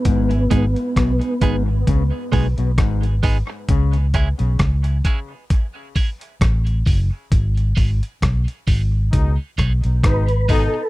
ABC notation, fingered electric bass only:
X:1
M:4/4
L:1/16
Q:"Swing 16ths" 1/4=66
K:G#phr
V:1 name="Fingered electric bass" clef=bass
G,,,2 G,,, z B,,, z G,,,2 C,, z B,,, B,,, G,,,3 z | C,,3 B,,, C,,2 z6 A,,,2 F,,, z | G,,,2 G,,, z B,,, z G,,,2 C,, z B,,, B,,, G,,,3 z |]